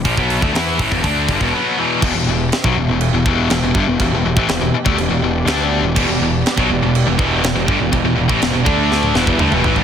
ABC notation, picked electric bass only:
X:1
M:4/4
L:1/16
Q:1/4=122
K:Em
V:1 name="Picked electric bass" clef=bass
^A,,, B,,,2 D,, E,,2 =A,,, E,,, D,,2 G,,, E,,, z4 | E,,, E,,, E,,,2 z B,,, E,,, E,,,2 E,,, E,,,2 E,,, E,,, G,,, E,,, | E,,, E,,, E,,, A,,, E,,, E,,, z D,, E,,, E,,, E,,,2 D,,3 E,,, | E,,, E,,, E,,,2 z B,,, E,,, E,,,2 E,,, E,,,2 E,,, E,,, G,,, E,,, |
E,,, E,,, E,,, A,,, E,,, E,,, D,,4 E,,,2 D,, E,,, A,,, G,,, |]